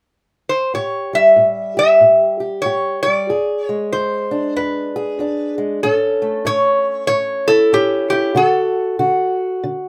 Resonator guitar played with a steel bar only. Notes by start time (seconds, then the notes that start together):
0.49 C5
0.75 C#5
1.15 E5
1.79 E5
2.62 C#5
3.03 D5
3.64 C#5
3.92 C5
4.56 B4
5.83 A4
6.47 C#5
7.07 C#5
7.48 A4
7.74 G4
8.10 G4
8.37 A4